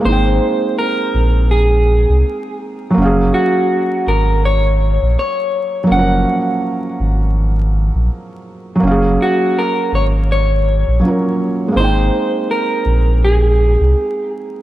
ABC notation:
X:1
M:4/4
L:1/16
Q:"Swing 16ths" 1/4=82
K:F#
V:1 name="Clean electric guitar"
^B4 A4 G6 z2 | z2 F4 A2 c4 c4 | f12 z4 | z2 F2 A2 c2 c8 |
^B4 A4 G6 z2 |]
V:2 name="Felt piano"
[G,A,^B,D=g]16 | [F,A,CGe]16 | [E,F,A,CA]16 | [F,A,CGe]12 [F,A,CEA]4 |
[G,A,^B,D=g]16 |]
V:3 name="Sub bass" clef=bass
G,,,2 z4 A,,,4- A,,, ^B,,, z4 | F,,,2 z4 G,,,4- G,,, A,,, z4 | F,,,2 z4 G,,,4- G,,, A,,, z4 | F,,,2 z4 G,,,4- G,,, A,,, z4 |
G,,,2 z4 A,,,4- A,,, ^B,,, z4 |]